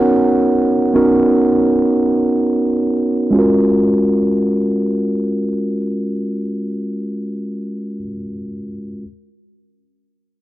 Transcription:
Already playing: B3 C#4 D#4 F#4 A#4 C#5
0.94 B3 C#4 D#4 F#4 A#4
3.31 G#3 C#4 F4
3.37 F#4 A#4

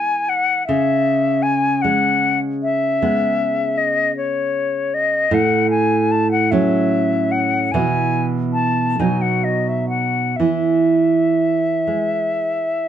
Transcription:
Already playing: E3 G#3 B3 G#5
0.29 F#5
0.67 C#3 E5
1.43 G#5
1.82 G#3 F#5
2.63 E5
3.02 G#3 B3
3.78 D#5
4.17 C#5
4.94 D#5
5.31 A2 F#5
5.71 G#5
6.11 A5
6.32 F#5
6.51 F#3 C#4 E5
7.32 F#5
7.72 B2 E3 E4 G#5
8.54 A5
8.99 B2 F#3 D#4 G#5
9.22 F#5
9.44 D#5
9.69 E5
9.89 F#5
10.36 E3 E5
11.87 G#3

